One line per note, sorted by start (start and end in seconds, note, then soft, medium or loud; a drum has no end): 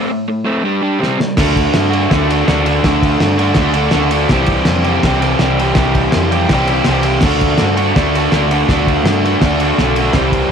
0.09 0.26 A2 medium
0.09 0.27 A3 medium
0.28 0.43 A2 medium
0.28 0.44 A3 medium
0.45 0.63 A2 medium
0.45 0.64 A3 medium
0.45 0.64 C4 medium
0.63 0.81 G3 medium
0.63 0.81 D4 medium
0.63 0.82 G4 medium
0.82 1.00 G3 medium
0.82 1.00 D4 loud
0.82 1.01 G4 loud
0.99 1.17 C3 loud
0.99 1.18 G3 loud
0.99 1.19 C4 loud
0.99 snare medium
1.19 1.36 C3 medium
1.19 1.36 G3 medium
1.19 snare medium
1.37 1.69 D2 loud
1.37 2.10 D3 loud
1.37 1.94 A3 loud
1.37 1.93 D4 loud
1.37 kick loud
1.37 snare loud
1.37 crash loud
1.41 1.90 F#4 loud
1.56 kick medium
1.56 ride medium
1.74 2.06 G2 medium
1.74 snare loud
1.74 ride loud
1.90 2.12 D4 medium
1.90 2.13 F#4 medium
1.90 ride medium
1.95 2.10 A3 medium
2.10 2.42 D2 medium
2.10 2.44 D3 medium
2.10 2.32 A3 medium
2.10 2.30 D4 medium
2.10 kick loud
2.10 snare loud
2.10 ride loud
2.14 2.28 F#4 medium
2.29 2.47 D4 medium
2.29 2.48 F#4 medium
2.29 ride medium
2.33 2.46 A3 medium
2.45 2.79 D2 loud
2.45 2.82 D3 loud
2.45 2.67 A3 loud
2.45 2.66 D4 loud
2.45 snare loud
2.45 ride medium
2.49 2.63 F#4 loud
2.65 2.83 A3 medium
2.65 2.84 D4 medium
2.65 2.86 F#4 medium
2.65 ride medium
2.83 3.14 D2 loud
2.83 3.56 D3 loud
2.83 3.41 A3 loud
2.83 3.38 D4 medium
2.83 kick loud
2.83 snare loud
2.83 ride loud
2.87 3.36 F#4 medium
3.03 kick medium
3.03 ride medium
3.20 3.51 G2 medium
3.20 snare loud
3.20 ride loud
3.37 3.59 D4 medium
3.37 3.60 F#4 medium
3.37 ride medium
3.42 3.58 A3 medium
3.54 3.87 D2 loud
3.54 3.91 D3 medium
3.54 kick loud
3.54 snare loud
3.54 ride loud
3.59 3.75 A3 medium
3.59 3.74 D4 medium
3.59 3.72 F#4 medium
3.73 3.91 A3 medium
3.73 3.93 D4 medium
3.73 3.94 F#4 medium
3.73 ride medium
3.91 4.25 D2 loud
3.91 4.29 D3 loud
3.91 4.14 A3 medium
3.91 4.11 D4 loud
3.91 4.10 F#4 loud
3.91 snare loud
3.91 ride loud
4.11 4.30 D4 medium
4.11 4.30 F#4 medium
4.11 ride medium
4.15 4.31 A3 medium
4.29 4.60 C2 loud
4.29 5.39 C3 loud
4.29 5.02 E3 loud
4.29 4.88 G3 loud
4.29 4.86 C4 loud
4.29 4.84 G4 loud
4.29 kick loud
4.29 snare loud
4.29 ride loud
4.46 kick medium
4.46 ride medium
4.65 4.98 F2 medium
4.65 snare loud
4.65 ride loud
4.84 5.04 C4 medium
4.84 5.06 G4 medium
4.84 ride medium
4.88 5.04 G3 medium
5.03 5.34 C2 medium
5.03 5.39 E3 medium
5.03 5.24 G3 medium
5.03 5.21 C4 medium
5.03 kick loud
5.03 snare loud
5.03 ride loud
5.07 5.19 G4 loud
5.20 5.40 C4 medium
5.20 5.42 G4 medium
5.20 ride medium
5.25 5.40 G3 medium
5.39 5.71 C2 loud
5.39 5.75 C3 loud
5.39 5.76 E3 loud
5.39 5.62 G3 loud
5.39 5.61 C4 loud
5.39 snare loud
5.39 ride medium
5.43 5.58 G4 loud
5.59 5.77 G3 medium
5.59 5.78 C4 medium
5.59 5.79 G4 medium
5.59 ride medium
5.75 6.07 C2 loud
5.75 6.50 C3 medium
5.75 6.49 E3 medium
5.75 6.35 G3 loud
5.75 kick loud
5.75 snare loud
5.75 ride loud
5.79 6.33 C4 loud
5.79 6.30 G4 medium
5.95 kick medium
5.95 ride medium
6.12 6.45 F2 medium
6.12 snare loud
6.12 ride loud
6.31 6.53 C4 medium
6.31 6.54 G4 medium
6.31 ride medium
6.36 6.51 G3 medium
6.49 6.79 C2 loud
6.49 6.87 E3 medium
6.49 kick loud
6.49 snare loud
6.49 ride loud
6.53 6.73 G3 medium
6.53 6.71 C4 medium
6.53 6.69 G4 medium
6.67 6.91 G4 medium
6.67 ride medium
6.72 6.88 G3 medium
6.72 6.90 C4 medium
6.84 7.17 C2 loud
6.84 7.22 C3 loud
6.84 snare loud
6.84 ride loud
6.89 7.22 E3 medium
6.89 7.09 G3 loud
6.89 7.07 C4 loud
6.89 7.04 G4 loud
7.03 7.22 G4 medium
7.03 ride medium
7.08 7.24 G3 medium
7.08 7.24 C4 medium
7.21 7.53 D2 loud
7.21 7.94 D3 loud
7.21 7.80 A3 medium
7.21 kick loud
7.21 snare loud
7.21 crash loud
7.25 7.78 D4 medium
7.25 7.76 F#4 loud
7.41 kick medium
7.41 ride medium
7.58 7.91 G2 medium
7.58 snare loud
7.58 ride loud
7.77 7.94 A3 medium
7.77 7.95 D4 medium
7.77 7.97 F#4 medium
7.77 ride medium
7.95 8.26 D2 medium
7.95 8.31 D3 medium
7.95 8.18 A3 medium
7.95 8.17 D4 medium
7.95 8.15 F#4 medium
7.95 kick loud
7.95 snare loud
7.95 ride loud
8.15 8.34 D4 medium
8.15 8.34 F#4 medium
8.15 ride medium
8.19 8.32 A3 medium
8.32 8.62 D2 loud
8.32 8.67 D3 loud
8.32 8.53 A3 loud
8.32 8.51 D4 loud
8.32 8.50 F#4 loud
8.32 snare loud
8.32 ride medium
8.51 8.70 A3 medium
8.51 8.70 D4 medium
8.51 8.71 F#4 medium
8.51 ride medium
8.68 8.99 D2 loud
8.68 9.41 D3 medium
8.68 9.27 A3 loud
8.68 9.26 D4 loud
8.68 kick loud
8.68 snare loud
8.68 ride loud
8.73 9.24 F#4 loud
8.87 kick medium
8.87 ride medium
9.03 9.34 G2 medium
9.03 snare loud
9.03 ride loud
9.25 9.43 A3 medium
9.25 9.44 D4 medium
9.25 9.45 F#4 medium
9.25 ride medium
9.40 9.71 D2 medium
9.40 9.78 D3 medium
9.40 9.64 A3 medium
9.40 kick loud
9.40 snare loud
9.40 ride loud
9.45 9.62 D4 medium
9.45 9.60 F#4 medium
9.60 9.81 D4 medium
9.60 9.82 F#4 medium
9.60 ride medium
9.65 9.80 A3 medium
9.78 10.08 B1 loud
9.78 10.14 D3 medium
9.78 10.01 A3 loud
9.78 snare loud
9.78 ride loud
9.82 9.99 D4 loud
9.82 9.97 F#4 loud
9.96 10.14 F#4 medium
9.96 ride medium
10.00 10.16 A3 medium
10.00 10.15 D4 medium
10.13 10.43 C2 loud
10.13 10.52 C3 loud
10.13 10.52 E3 loud
10.13 10.52 G3 loud
10.13 10.52 C4 loud
10.13 kick loud
10.13 snare loud
10.13 ride loud
10.17 10.52 G4 loud
10.32 kick medium
10.32 ride medium
10.48 10.52 F2 medium